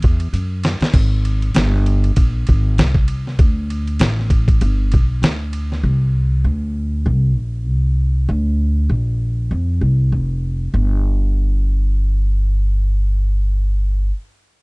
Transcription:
0.02 E2, kick, ride
0.20 ride
0.33 F#2, hi-hat pedal, ride
0.64 snare, ride
0.81 muted upright bass stroke, snare, ride
0.94 G#1, kick, crash
1.25 ride
1.42 ride
1.55 G1, snare, hi-hat pedal, ride
1.74 snare
1.86 ride
2.04 ride
2.16 A#1, kick, ride
2.47 G#1, kick, ride
2.78 C2, snare, hi-hat pedal, ride
2.95 kick
3.08 ride
3.27 snare
3.39 D2, kick, ride
3.70 ride
3.87 ride
3.99 A1, snare, hi-hat pedal, ride
4.19 snare
4.30 kick, ride
4.48 kick, ride
4.61 G1, ride
4.92 B1, kick, ride
5.22 D2, snare, hi-hat pedal, ride
5.53 ride
5.72 snare
5.83 C2
6.44 D2
7.06 C2
7.36 A#1
7.67 C2
8.29 D2
8.90 A#1
9.51 F2
9.81 C2
10.12 F1
10.74 G1

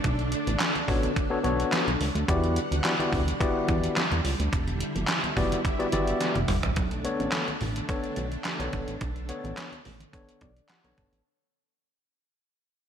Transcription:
Already playing: D3 A3 D4
0.04 B1, kick, closed hi-hat, low conga
0.19 closed hi-hat
0.32 closed hi-hat, muted conga
0.47 A1, closed hi-hat, high conga
0.60 snare, clap, closed hi-hat, muted conga
0.76 closed hi-hat, high conga
0.88 A1 B3 D4 F#4 A4 C#5, kick, open hi-hat, muted conga, low conga
1.03 closed hi-hat, high conga
1.16 kick, closed hi-hat, muted conga
1.30 B3 D4 F#4 A4 C#5
1.44 B1 B3 D4 F#4 A4 C#5, closed hi-hat, muted conga, high conga
1.60 closed hi-hat
1.72 snare, clap, closed hi-hat, muted conga
1.87 B1, closed hi-hat, high conga
2.00 C#2, open hi-hat, muted conga
2.15 D2, closed hi-hat
2.27 E2 D3 G3 B3 E4 F#4 G4 D5 F#5, kick, closed hi-hat, low conga
2.44 closed hi-hat
2.56 closed hi-hat
2.71 D2, closed hi-hat, high conga
2.84 B3 E4 F#4 G4 D5, snare, clap, closed hi-hat
2.99 B3 E4 F#4 G4 D5, closed hi-hat, high conga
3.13 D2, kick, open hi-hat, low conga
3.27 closed hi-hat, high conga
3.40 B3 E4 F#4 G4 D5, kick, closed hi-hat, muted conga
3.68 E2, kick, closed hi-hat, muted conga, high conga
3.84 closed hi-hat
3.96 snare, clap, closed hi-hat, muted conga
4.11 E2, closed hi-hat, high conga
4.25 C#2, open hi-hat
4.39 D2, closed hi-hat
4.53 E1 E4, kick, closed hi-hat, low conga
4.68 closed hi-hat, high conga
4.80 closed hi-hat
4.95 F#1, closed hi-hat, high conga
5.08 snare, clap, closed hi-hat
5.24 closed hi-hat, high conga
5.36 F#1 B3 E4 F#4 G4 D5, kick, open hi-hat, muted conga, low conga
5.52 closed hi-hat, high conga
5.65 kick, closed hi-hat
5.79 B3 E4 F#4 G4 D5, closed hi-hat
5.92 G1 B3 E4 F#4 G4 D5, closed hi-hat, muted conga, high conga
6.07 closed hi-hat
6.21 snare, closed hi-hat
6.35 F#1, closed hi-hat, high tom, high conga
6.48 G1, mid tom, open hi-hat
6.63 A1, closed hi-hat, floor tom
6.76 B1 D3 A3 D4, kick, closed hi-hat, low conga
6.91 closed hi-hat
7.04 B3 D4 A4 C#5, closed hi-hat
7.20 A1, closed hi-hat, high conga
7.32 snare, clap, closed hi-hat, muted conga
7.48 closed hi-hat, high conga
7.61 A1, open hi-hat, muted conga, low conga
7.76 closed hi-hat, high conga
7.89 B3 D4 A4 C#5, kick, closed hi-hat, muted conga
8.04 closed hi-hat
8.16 B1, closed hi-hat, high conga
8.32 closed hi-hat
8.44 snare, clap, closed hi-hat, muted conga
8.59 B1 B3 D4 A4 C#5, closed hi-hat, high conga
8.73 G1, kick, closed hi-hat, muted conga, low conga
8.88 A1, closed hi-hat
9.01 B1, kick, closed hi-hat, low conga
9.16 closed hi-hat
9.29 B3 D4 A4 C#5, closed hi-hat, muted conga
9.44 A1, closed hi-hat, high conga
9.57 snare, clap, closed hi-hat, muted conga
9.72 closed hi-hat, high conga
9.85 A1, open hi-hat, muted conga, low conga
10.00 closed hi-hat, high conga
10.13 B3 D4 A4 C#5, kick, closed hi-hat
10.29 closed hi-hat
10.41 B1 D5, kick, closed hi-hat, high conga
10.56 closed hi-hat
10.69 F#5, snare, clap, closed hi-hat
10.84 B1 B3 D4 A4 C#5, closed hi-hat, high conga
10.97 G1 A5, kick, closed hi-hat, low conga
11.12 A1, closed hi-hat

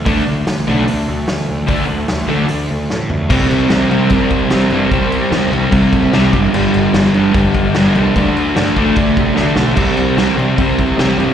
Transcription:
0.05 D2 D3 A3 D4, kick, open hi-hat
0.27 D2
0.47 D2, snare, open hi-hat
0.67 B1 D3 A3 D4
0.88 D2, open hi-hat
1.08 D2
1.28 D2, snare, open hi-hat
1.49 D2
1.67 D2 D3 A3 D4, kick, open hi-hat
1.89 D2
2.08 D2, snare, open hi-hat
2.27 D2 D3 A3 D4
2.48 D2, open hi-hat
2.71 D2
2.90 A2, snare
3.10 D2, floor tom
3.29 C2 C3 G3 C4, kick, crash
3.51 C2, crash
3.69 C2 C3 G3 C4, snare, crash
3.90 C3 G3 C4, crash
4.10 C2 C3 G3 C4, kick, crash
4.30 C2, kick, crash
4.49 C3 G3 C4, snare, crash
4.70 G2 C3 G3, crash
4.74 C4
4.91 C2 C3 G3 C4, kick, crash
5.12 crash
5.31 E2 C3 G3 C4, snare, crash
5.51 C2 C3 G3 C4, crash
5.71 C2 C3 G3 C4, kick, crash
5.92 A2, kick, crash
6.13 C2 C3 G3 C4, snare, crash
6.32 G1 G2 D3 G3, kick, crash
6.53 G1 G2 D3 G3, crash
6.74 G1, crash
6.94 G1 G2 D3 G3, snare, crash
7.13 G2 D3 G3, crash
7.32 G1 G2 D3 G3, kick, crash
7.54 G1, kick, crash
7.75 G2 D3 G3, snare, crash
7.95 C2 G2 D3 G3, crash
8.16 D2 D3 A3 D4, kick, crash
8.37 crash
8.56 G2 D3 A3 D4, snare, crash
8.76 D2 D3 A3 D4, kick, crash
8.96 D2 D3 A3 D4, kick, crash
9.17 C3, kick, crash
9.35 D2 D3 A3 D4, snare
9.55 B1 D3 A3 D4, snare
9.75 C2 C3 G3 C4, kick, crash
9.97 C2, crash
10.17 C2 C3 G3 C4, snare, crash
10.37 C3 G3 C4, crash
10.57 C2 C3 G3 C4, kick, crash
10.79 C2, kick, crash
10.98 C3 G3 C4, snare, crash
11.18 G2 C3 G3 C4, crash

